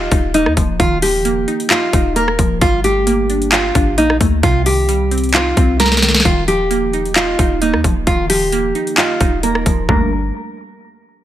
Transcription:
0.00 0.12 D#3 loud
0.00 0.34 F3 medium
0.00 0.33 A#3 loud
0.00 0.10 D#4 medium
0.00 0.31 F4 medium
0.00 1.02 D#5 loud
0.11 0.48 D#1 loud
0.11 1.25 D#4 medium
0.11 kick loud
0.11 closed hi-hat medium
0.34 1.24 A#3 medium
0.34 0.52 D#4 medium
0.34 closed hi-hat medium
0.46 0.56 D#2 loud
0.46 cross-stick medium
0.57 0.79 D#1 loud
0.57 1.01 F3 medium
0.57 kick medium
0.57 closed hi-hat medium
0.80 1.45 D#1 loud
0.80 1.93 D#3 loud
0.80 0.97 F4 loud
0.80 kick loud
0.80 closed hi-hat medium
1.02 2.16 F3 medium
1.02 1.67 G4 medium
1.02 open hi-hat medium
1.25 2.15 A#3 loud
1.25 closed hi-hat medium
1.48 1.92 D#4 loud
1.48 closed hi-hat medium
1.60 closed hi-hat medium
1.70 2.13 F4 medium
1.70 2.62 D#5 loud
1.70 clap loud
1.70 closed hi-hat medium
1.93 2.37 D#1 loud
1.93 2.61 D#4 medium
1.93 kick loud
1.93 closed hi-hat medium
2.16 2.61 A#3 medium
2.16 2.59 A#4 medium
2.16 closed hi-hat medium
2.28 cross-stick medium
2.38 2.61 D#1 loud
2.38 2.61 F3 medium
2.38 kick medium
2.38 closed hi-hat medium
2.61 3.71 G1 loud
2.61 3.75 G3 loud
2.61 2.79 F4 loud
2.61 kick loud
2.61 closed hi-hat medium
2.84 3.98 A3 medium
2.84 3.48 G4 medium
2.84 closed hi-hat medium
3.07 3.97 A#3 loud
3.07 closed hi-hat medium
3.30 3.74 D4 medium
3.30 closed hi-hat medium
3.42 closed hi-hat medium
3.52 3.95 F4 medium
3.52 4.43 G4 loud
3.52 clap loud
3.52 closed hi-hat medium
3.75 3.99 G1 loud
3.75 4.43 D4 medium
3.75 kick loud
3.75 closed hi-hat medium
3.98 4.20 A#1 loud
3.98 4.43 A#3 medium
3.98 4.16 D#4 medium
3.98 closed hi-hat medium
4.10 cross-stick medium
4.21 4.42 D2 loud
4.21 4.43 A3 medium
4.21 kick medium
4.21 closed hi-hat medium
4.43 5.53 C2 loud
4.43 5.57 C3 loud
4.43 4.61 F4 loud
4.43 kick loud
4.43 closed hi-hat medium
4.66 5.80 D#3 medium
4.66 5.30 G4 medium
4.66 open hi-hat medium
4.89 5.78 G3 loud
4.89 closed hi-hat medium
5.11 5.56 C4 medium
5.11 closed hi-hat medium
5.18 closed hi-hat medium
5.24 closed hi-hat soft
5.29 closed hi-hat soft
5.34 6.25 D#4 medium
5.34 5.77 F4 medium
5.34 clap loud
5.34 closed hi-hat medium
5.57 6.22 C2 loud
5.57 6.25 C4 loud
5.57 kick loud
5.57 closed hi-hat medium
5.80 6.25 G3 medium
5.80 6.23 A#4 medium
5.80 snare medium
5.80 closed hi-hat medium
5.86 snare medium
5.92 snare medium
5.97 snare medium
6.02 6.24 D#3 medium
6.02 snare loud
6.02 closed hi-hat medium
6.09 snare medium
6.15 snare loud
6.20 snare loud
6.25 7.35 D#1 loud
6.25 7.39 D#3 medium
6.25 6.43 F4 loud
6.25 kick loud
6.25 closed hi-hat medium
6.48 7.62 F3 medium
6.48 7.12 G4 medium
6.48 closed hi-hat medium
6.71 7.61 A#3 loud
6.71 closed hi-hat medium
6.93 7.38 D#4 medium
6.93 closed hi-hat soft
7.05 closed hi-hat soft
7.16 7.59 F4 medium
7.16 8.30 D#5 loud
7.16 clap loud
7.16 closed hi-hat medium
7.39 7.75 D#1 loud
7.39 8.53 D#4 medium
7.39 kick loud
7.39 closed hi-hat medium
7.61 8.51 A#3 medium
7.61 7.79 D#4 medium
7.61 closed hi-hat medium
7.74 7.84 D#2 loud
7.74 cross-stick medium
7.84 8.06 D#1 loud
7.84 8.28 F3 medium
7.84 kick medium
7.84 closed hi-hat medium
8.07 8.72 D#1 loud
8.07 9.21 D#3 loud
8.07 8.25 F4 loud
8.07 kick loud
8.07 closed hi-hat medium
8.30 9.43 F3 medium
8.30 8.94 G4 medium
8.30 open hi-hat medium
8.52 9.42 A#3 loud
8.52 closed hi-hat medium
8.75 9.20 D#4 medium
8.75 closed hi-hat soft
8.87 closed hi-hat soft
8.98 9.41 F4 medium
8.98 9.89 D#5 loud
8.98 clap loud
8.98 closed hi-hat medium
9.20 9.64 D#1 loud
9.20 9.89 D#4 medium
9.20 kick loud
9.20 closed hi-hat medium
9.43 9.88 A#3 medium
9.43 9.86 A#4 medium
9.43 closed hi-hat medium
9.55 cross-stick medium
9.66 9.88 D#1 loud
9.66 9.89 F3 medium
9.66 kick medium
9.66 closed hi-hat medium
9.89 10.31 G1 loud
9.89 10.10 G3 medium
9.89 10.10 A3 medium
9.89 10.10 A#3 medium
9.89 10.10 D4 medium
9.89 10.10 A#4 medium
9.89 kick loud
9.89 floor tom loud

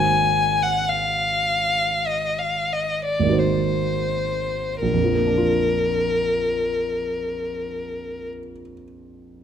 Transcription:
0.00 3.18 G#1 soft
0.00 3.22 A#3 soft
0.00 3.24 D#4 soft
0.00 3.28 F#4 soft
0.00 3.31 C5 soft
0.00 0.64 G#5 medium
0.62 0.90 F#5 medium
0.89 2.09 F5 medium
2.08 2.40 D#5 medium
2.39 2.74 F5 soft
2.73 3.04 D#5 soft
3.04 3.40 D5 medium
3.20 4.70 G#1 soft
3.20 4.71 A#3 soft
3.26 4.73 D#4 soft
3.26 4.75 F#4 soft
3.33 4.76 C5 soft
3.38 4.81 C5 soft
4.82 8.29 A#1 soft
4.82 8.28 A#4 medium
4.93 8.40 F2 soft
5.04 8.51 F3 soft
5.15 8.62 A#3 soft
5.27 8.73 D4 soft
5.38 8.84 F4 soft

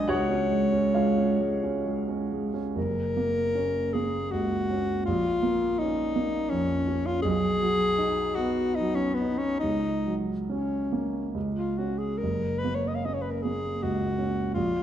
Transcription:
0.00 0.12 B1 medium
0.00 0.12 G#3 medium
0.00 0.12 D4 medium
0.00 0.12 G#4 medium
0.00 0.12 D5 medium
0.00 0.11 D#5 medium
0.00 0.12 G#5 loud
0.08 2.71 C#2 medium
0.08 0.93 F#4 medium
0.08 0.93 C#5 medium
0.08 2.33 C#5 medium
0.08 0.96 F#5 medium
0.29 0.65 C#4 medium
0.51 0.87 G#3 soft
0.72 1.09 C#4 medium
0.94 1.32 G#3 soft
0.94 1.82 F4 soft
0.94 1.82 C#5 soft
0.94 1.85 F5 medium
1.18 1.54 C#4 soft
1.40 1.77 G#3 medium
1.64 2.00 C#4 soft
1.86 2.23 G#3 soft
2.09 2.46 C#4 soft
2.33 2.68 G#3 soft
2.54 2.75 C#4 soft
2.75 5.02 F#1 medium
2.75 3.95 A#4 medium
3.17 3.79 A#3 soft
3.55 4.16 C#4 soft
3.93 4.55 A#3 soft
3.93 4.33 G#4 medium
4.32 4.93 C#2 soft
4.32 5.05 F#4 medium
4.71 5.07 C#4 soft
5.05 7.21 A#1 medium
5.05 5.80 F4 medium
5.43 6.00 A#3 soft
5.79 6.37 C#4 soft
5.79 6.51 D#4 medium
6.16 6.73 A#3 soft
6.50 7.10 F2 soft
6.50 7.08 C#4 medium
6.88 7.24 C#4 medium
7.06 7.22 F4 medium
7.22 9.58 B1 medium
7.22 8.37 G#4 loud
7.61 8.21 F#3 medium
7.98 8.61 D#4 medium
8.35 9.03 B3 medium
8.35 8.77 F#4 medium
8.75 8.97 D#4 medium
8.80 9.46 F#3 medium
8.95 9.16 C#4 medium
9.15 9.40 B3 medium
9.21 9.63 D#4 medium
9.38 9.59 C#4 medium
9.60 11.31 C#2 medium
9.60 10.16 D#4 medium
10.06 10.75 F#3 soft
10.46 11.30 C#4 medium
10.46 11.18 C#4 soft
10.92 11.35 A#3 soft
11.34 12.19 C#2 soft
11.56 11.79 F4 medium
11.78 12.18 C#4 soft
11.78 12.00 F#4 medium
11.99 12.20 G#4 medium
12.18 12.60 A#4 medium
12.23 14.53 F#1 soft
12.59 12.76 B4 medium
12.65 13.29 A#3 soft
12.75 12.89 C#5 medium
12.88 12.97 D#5 soft
12.95 13.07 F5 medium
13.05 13.68 C#4 soft
13.05 13.16 D#5 medium
13.14 13.23 C#5 medium
13.22 13.32 B4 soft
13.31 13.44 A#4 medium
13.43 14.06 A#3 soft
13.43 13.85 G#4 medium
13.83 14.42 C#2 soft
13.83 14.54 F#4 medium
14.19 14.56 C#4 soft
14.54 14.83 A#1 medium
14.54 14.83 F4 medium

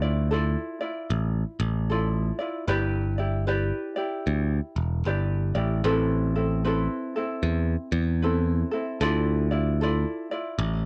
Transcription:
0.00 0.55 D2 loud
0.00 0.31 E4 soft
0.00 0.31 F4 soft
0.00 0.30 D5 medium
0.31 0.80 E4 medium
0.31 0.82 F4 medium
0.31 0.80 A4 medium
0.31 0.79 D5 medium
0.81 1.91 E4 medium
0.81 1.90 F4 soft
0.81 1.89 D5 medium
1.10 1.43 A1 loud
1.60 2.30 A1 loud
1.90 2.39 E4 medium
1.90 2.40 F4 medium
1.90 2.38 A4 medium
1.90 2.37 D5 medium
2.39 2.67 E4 soft
2.39 2.68 F4 medium
2.39 2.68 D5 medium
2.67 3.71 G1 loud
2.67 3.18 E4 medium
2.67 3.18 G4 medium
2.67 3.18 B4 medium
2.67 3.17 D5 loud
3.18 3.46 E4 soft
3.18 3.47 G4 soft
3.18 3.47 D5 medium
3.47 3.97 E4 medium
3.47 3.96 G4 medium
3.47 3.97 B4 medium
3.47 3.95 D5 medium
3.96 5.05 E4 soft
3.96 5.05 G4 medium
3.96 5.05 D5 medium
4.27 4.59 D2 medium
4.76 5.02 E1 medium
5.05 5.51 G1 medium
5.05 5.56 E4 medium
5.05 5.55 G4 medium
5.05 5.56 B4 medium
5.05 5.54 D5 medium
5.55 5.81 A1 medium
5.55 5.84 E4 soft
5.55 5.84 G4 medium
5.55 5.84 D5 medium
5.84 6.87 A1 loud
5.84 6.34 C4 loud
5.84 6.35 E4 loud
5.84 6.34 A4 medium
5.84 6.34 B4 medium
6.36 6.64 C4 soft
6.36 6.64 E4 medium
6.36 6.64 A4 soft
6.65 7.14 C4 medium
6.65 7.15 E4 medium
6.65 7.14 A4 medium
6.65 7.14 B4 medium
7.16 8.22 C4 soft
7.16 8.23 E4 medium
7.16 8.24 A4 medium
7.43 7.75 E2 medium
7.92 8.63 E2 loud
8.22 8.73 C4 medium
8.22 8.72 E4 medium
8.22 8.70 A4 medium
8.22 8.72 B4 medium
8.71 9.01 C4 soft
8.71 9.01 E4 medium
8.71 8.99 A4 medium
9.01 10.04 D2 loud
9.01 9.50 E4 medium
9.01 9.51 F4 medium
9.01 9.50 A4 medium
9.01 9.50 D5 medium
9.51 9.80 E4 medium
9.51 9.81 F4 soft
9.51 9.80 D5 medium
9.81 10.31 E4 medium
9.81 10.31 F4 medium
9.81 10.30 A4 medium
9.81 10.30 D5 medium
10.31 10.86 E4 medium
10.31 10.86 F4 soft
10.31 10.86 D5 medium
10.59 10.86 A1 loud

